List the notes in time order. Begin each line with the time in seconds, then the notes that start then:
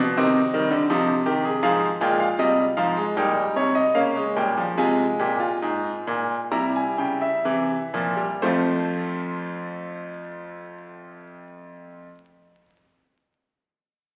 Already playing: F3 D4 D5
0.00 B2
0.17 C3 D#3 C4 D#5
0.54 D#3 G3
0.71 D3
0.90 C3 F3 D#4
1.26 D#3 G4
1.45 G#4
1.62 G#2 F3 G#4 F5
2.01 A#2 G#3 F4 G5
2.20 F5
2.39 C3 G3 D#5
2.77 G#2 F3 F5
2.97 G#3
3.17 A#2 G3 D#4 G5
3.56 C3 C#5
3.75 D#5
3.95 C#3 A#3 C#4 F5
4.16 G#3
4.36 A#2 G3 G5
4.57 F3
4.78 C3 G#3 F4 G#5
5.19 A#2 G4
5.39 F4
5.62 G#2
6.07 A#2
6.51 C3 G3 E4 A#5
6.76 G#5
6.98 C#3 G5
7.21 E5
7.45 C3 E3
7.94 A#2 F3
8.16 G3
8.42 F2 F3 A3 C4 F4 C5